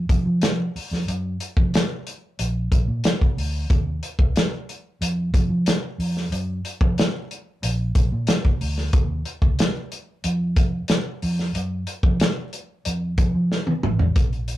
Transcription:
0.09 fingered electric bass F2, kick, closed hi-hat
0.26 fingered electric bass F3
0.42 snare, closed hi-hat
0.76 muted fingered electric bass stroke, open hi-hat
0.91 fingered electric bass F2, snare
1.08 fingered electric bass F#2, closed hi-hat
1.40 closed hi-hat
1.57 fingered electric bass F2, kick
1.74 snare, closed hi-hat
2.07 closed hi-hat
2.39 fingered electric bass A#1, closed hi-hat
2.72 fingered electric bass A#1, kick, closed hi-hat
2.87 fingered electric bass A#2
3.04 snare, closed hi-hat
3.21 kick
3.37 fingered electric bass D2, open hi-hat
3.70 fingered electric bass D#2, kick, closed hi-hat
4.03 closed hi-hat
4.19 fingered electric bass C#2, kick
4.36 snare, closed hi-hat
4.69 closed hi-hat
5.01 fingered electric bass F2, closed hi-hat
5.34 fingered electric bass F2, kick, closed hi-hat
5.50 fingered electric bass F3
5.66 snare, closed hi-hat
5.98 fingered electric bass F2, open hi-hat
6.17 snare
6.31 fingered electric bass F#2, closed hi-hat
6.65 closed hi-hat
6.81 fingered electric bass F2, kick
6.98 snare, closed hi-hat
7.31 closed hi-hat
7.63 fingered electric bass A#1, closed hi-hat
7.95 fingered electric bass A#1, kick, closed hi-hat
8.12 fingered electric bass A#2
8.27 snare, closed hi-hat
8.45 kick
8.61 fingered electric bass D2, open hi-hat
8.78 snare
8.93 fingered electric bass D#2, kick, closed hi-hat
9.25 closed hi-hat
9.42 fingered electric bass C#2, kick
9.59 snare, closed hi-hat
9.92 closed hi-hat
10.24 fingered electric bass F2, closed hi-hat
10.56 kick, closed hi-hat
10.88 snare, closed hi-hat
11.22 fingered electric bass F2, open hi-hat
11.39 snare
11.55 fingered electric bass F#2, closed hi-hat
11.87 closed hi-hat
12.03 fingered electric bass F2, kick
12.20 snare, closed hi-hat
12.53 closed hi-hat
12.85 fingered electric bass F2, closed hi-hat
13.18 fingered electric bass F2, kick, closed hi-hat
13.35 fingered electric bass F3
13.52 snare
13.67 high tom
13.83 fingered electric bass A1, mid tom
13.99 floor tom
14.16 fingered electric bass A#1, kick, closed hi-hat
14.33 closed hi-hat
14.48 closed hi-hat

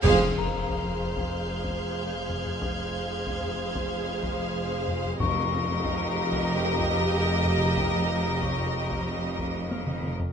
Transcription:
0.02 double bass section F1, cello section F2, timpani F2, viola section G#4, violin section C5 F5 F6 G6, concert bass drum, taiko, crash, impact
0.38 celesta A#4 A#5
0.69 taiko
0.85 taiko low
1.17 taiko
1.32 violin section G#6
1.65 taiko
2.29 taiko low
2.46 taiko low
2.62 taiko
3.27 taiko
3.43 taiko low
3.75 taiko
4.23 taiko
4.88 taiko low
5.05 taiko low
5.20 double bass section F1, timpani F2, cello section F2, viola section G4, violin section A#4 D#5, celesta C#6, taiko
5.85 taiko
6.00 taiko low
6.32 taiko
6.80 taiko
7.45 taiko low
7.62 taiko low
7.77 taiko
8.41 celesta C#5 C#6, taiko
8.58 taiko low
8.91 taiko
9.39 taiko
9.71 celesta F6, taiko high
9.87 taiko mid
10.03 taiko mid
10.20 taiko low

